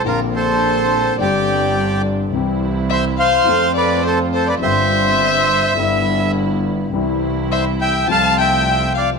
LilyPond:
<<
  \new Staff \with { instrumentName = "Violin" } { \time 4/4 \key c \major \tempo 4 = 105 bes'8 c''4. d''4. r8 | r4 e''8 f''4 d''8 c''8 c''16 d''16 | e''2. r4 | r4 e''8 g''8 a''8 g''4 f''8 | }
  \new Staff \with { instrumentName = "Bandoneon" } { \time 4/4 \key c \major << { bes'8 c''4. d''4. r8 | r4 e''8 f''4 d''8 c''8 c''16 d''16 | e''2. r4 | r4 e''8 g''8 a''8 g''4 f''8 | } \\ { f'8 a'4. g'4. r8 | r4 c''8 c''4 b'8 a'8 a'16 b'16 | c''2 r2 | r4 c''8 e''8 f''8 e''4 d''8 | } >> }
  \new Staff \with { instrumentName = "String section" } { \time 4/4 \key c \major <bes c' d'>2 <g c' d'>2 | <g c' e'>2 <a c' f'>2 | <g c' f'>2 <g b e'>2 | <g c' e'>2 <a c' f'>2 | }
  \new Staff \with { instrumentName = "Grand piano" } { \clef bass \time 4/4 \key c \major <bes,, bes, d bes c' f'>2 <g,, g, d g c' g'>2 | <c, c e g c' g'>2 <f, f a c' a'>2 | <g,, g, d g c' f'>2 <g,, g, d g b e'>2 | <c, c e g e'>2 <c, c f a f'>2 | }
  \new Staff \with { instrumentName = "Double bass" } { \clef bass \time 4/4 \key c \major bes,,2 g,,2 | c,2 f,2 | g,,2 g,,2 | c,2 c,2 | }
>>